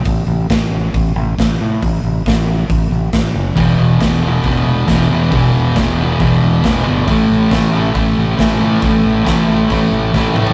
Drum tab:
HH |o---o---o---o---|o---o---o---o---|o---o---o---o---|o---o---o---o---|
SD |----o-------o---|----o-------o---|----o-------o---|----o-------o---|
T2 |----------------|----------------|----------------|----------------|
FT |----------------|----------------|----------------|----------------|
BD |o---o---o---o---|o---o---o---o---|o---o---o---o---|o---o---o---o---|

HH |o---o---o---o---|o---o---o-------|
SD |----o-------o---|----o-------o---|
T2 |----------------|--------------o-|
FT |----------------|---------------o|
BD |o---o---o---o---|o---o---o---o---|